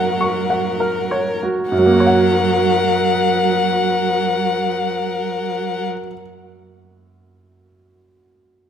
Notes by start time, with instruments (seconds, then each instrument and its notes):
Already playing: grand piano F#2 C#3 A#3 F#4 A#4 C#5 F#5, cello F#3, violin A#4 F#5
0.21 grand piano C#6
0.50 grand piano F#5
0.80 grand piano A#4
1.11 grand piano C#5
1.43 grand piano F#4
1.71 grand piano F#2, cello F#3, violin A#4 F#5
1.79 grand piano F#3
1.86 grand piano A#3
1.93 grand piano F#4
2.00 grand piano C#5
2.07 grand piano F#5